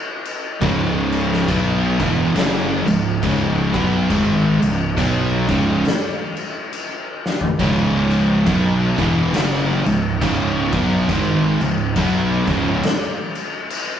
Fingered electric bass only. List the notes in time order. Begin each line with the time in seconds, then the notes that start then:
0.61 C#1
1.49 B1
2.00 E1
2.35 F#1
2.87 C#1
3.23 C#1
3.74 B1
4.10 G#1
4.62 C#1
4.98 B1
5.49 C#1
7.59 C#1
8.47 B1
8.98 E1
9.35 F#1
9.86 C#1
10.22 C#1
10.73 B1
11.09 G#1
11.61 C#1
11.96 B1
12.48 C#1